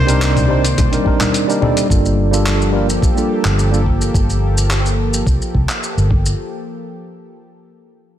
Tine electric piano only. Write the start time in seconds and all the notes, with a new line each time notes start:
0.06 G3 C4 D4 D#4 A#4
0.48 G3 C4 D4 D#4 C5
0.91 G3 C4 D4 D#4 A#4
1.04 G3 C4 D4 D#4 A#4
1.47 G3 C4 D4 D#4 A#4
1.60 G3 C4 D4 D#4 A4
1.88 G3 A#3 D4 F4 A4
2.31 G3 A#3 D4 F4 A4
2.72 G3 A#3 D4 F4 A#4
3.15 G3 A#3 D4 F4 A4
3.71 G3 A#3 D4 F4 A4